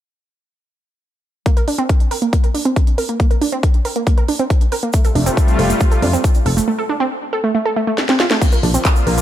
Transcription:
1.46 A#3, kick, closed hi-hat
1.57 A#4, closed hi-hat
1.68 D4, open hi-hat
1.78 C4, closed hi-hat
1.89 kick, closed hi-hat
2.00 closed hi-hat
2.11 A#4, open hi-hat
2.22 A#3, closed hi-hat
2.33 A#3, kick, closed hi-hat
2.44 A#4, closed hi-hat
2.55 D4, open hi-hat
2.65 C4, closed hi-hat
2.76 kick, closed hi-hat
2.87 closed hi-hat
2.98 A#4, open hi-hat
3.09 A#3, closed hi-hat
3.20 A#3, kick, closed hi-hat
3.31 A#4, closed hi-hat
3.42 D4, open hi-hat
3.52 C4, closed hi-hat
3.63 kick, closed hi-hat
3.74 closed hi-hat
3.85 A#4, open hi-hat
3.96 A#3, closed hi-hat
4.07 A#3, kick, closed hi-hat
4.18 A#4, closed hi-hat
4.28 D4, open hi-hat
4.39 C4, closed hi-hat
4.50 kick, closed hi-hat
4.61 closed hi-hat
4.72 A#4, open hi-hat
4.83 A#3, closed hi-hat
4.93 C3 G3 A3 F4, kick, closed hi-hat, shaker
5.05 A4, closed hi-hat, shaker
5.15 F1 D4, open hi-hat
5.26 C4, closed hi-hat, shaker
5.37 kick, closed hi-hat, shaker
5.48 closed hi-hat, shaker
5.59 F1 A4, open hi-hat
5.70 A3, closed hi-hat, shaker
5.80 A3, kick, closed hi-hat, shaker
5.92 A4, closed hi-hat, shaker
6.02 F2 D4, open hi-hat
6.13 C4, closed hi-hat, shaker
6.24 kick, closed hi-hat, shaker
6.35 closed hi-hat, shaker
6.46 F1 A4, open hi-hat
6.57 A3, closed hi-hat, shaker
6.68 A3
6.79 A4
6.89 D4
7.00 C4
7.33 A4
7.44 A3
7.55 A3
7.65 A4
7.76 A3
7.87 A3
7.98 snare
8.09 C4, snare
8.20 F4, snare
8.31 A3, snare
8.41 D3 F3 A#3 F4, kick, closed hi-hat, crash, shaker
8.52 A#4, shaker
8.63 A#1 D4, open hi-hat
8.74 C4, closed hi-hat, shaker
8.85 kick, clap, closed hi-hat, shaker
8.96 shaker
9.07 A#1 A#4, open hi-hat
9.18 A#3, closed hi-hat, shaker

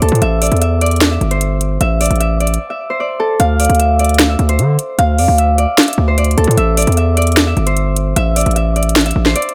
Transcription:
Already playing: C5 D5 E5
0.02 D2 A4, closed hi-hat
0.09 A2, closed hi-hat
0.15 closed hi-hat
0.22 A1 E5, closed hi-hat
0.42 D5, closed hi-hat, open hi-hat
0.47 closed hi-hat
0.52 E2, closed hi-hat
0.57 closed hi-hat
0.61 E5, closed hi-hat
0.81 D5, closed hi-hat
0.86 closed hi-hat
0.91 closed hi-hat
0.96 closed hi-hat
1.01 snare, closed hi-hat
1.11 E5
1.21 G1, closed hi-hat
1.31 C5, closed hi-hat
1.41 closed hi-hat
1.61 closed hi-hat
1.81 A1 E5, closed hi-hat
2.01 D5, closed hi-hat, open hi-hat
2.06 closed hi-hat
2.10 A1, closed hi-hat
2.16 closed hi-hat
2.20 E5, closed hi-hat
2.40 D5, closed hi-hat
2.47 closed hi-hat
2.54 closed hi-hat
2.70 E5
2.90 C5
3.00 D5
3.20 A4
3.40 D2 F5, closed hi-hat
3.60 D5, closed hi-hat, open hi-hat
3.65 closed hi-hat
3.69 D2, closed hi-hat
3.75 closed hi-hat
3.79 E5, closed hi-hat
3.99 D5, closed hi-hat
4.04 closed hi-hat
4.09 closed hi-hat
4.14 closed hi-hat
4.19 snare, closed hi-hat
4.29 E5
4.39 D2, closed hi-hat
4.49 C5, closed hi-hat
4.59 D3, closed hi-hat
4.79 closed hi-hat
4.99 D2 F5, closed hi-hat
5.18 F2 D5, open hi-hat
5.28 D2
5.38 E5, closed hi-hat
5.58 D5, closed hi-hat
5.78 snare, closed hi-hat
5.83 closed hi-hat
5.88 E5, closed hi-hat
5.93 closed hi-hat
5.98 D2
6.08 C5
6.18 D5, closed hi-hat
6.24 closed hi-hat
6.31 closed hi-hat
6.38 D2 A4, closed hi-hat
6.44 A2, closed hi-hat
6.51 closed hi-hat
6.57 A1 E5, closed hi-hat
6.77 D5, closed hi-hat, open hi-hat
6.82 closed hi-hat
6.87 E2, closed hi-hat
6.92 closed hi-hat
6.97 E5, closed hi-hat
7.17 D5, closed hi-hat
7.22 closed hi-hat
7.27 closed hi-hat
7.32 closed hi-hat
7.37 snare, closed hi-hat
7.47 E5
7.57 G1, closed hi-hat
7.67 C5, closed hi-hat
7.77 closed hi-hat
7.96 closed hi-hat
8.16 A1 E5, closed hi-hat
8.36 D5, closed hi-hat, open hi-hat
8.41 closed hi-hat
8.46 A1, closed hi-hat
8.51 closed hi-hat
8.56 E5, closed hi-hat
8.76 D5, closed hi-hat
8.83 closed hi-hat
8.89 closed hi-hat
8.96 snare, closed hi-hat
9.01 closed hi-hat
9.06 E5, closed hi-hat
9.11 closed hi-hat
9.16 A1
9.26 C5, snare
9.36 D5, closed hi-hat
9.42 closed hi-hat
9.49 closed hi-hat

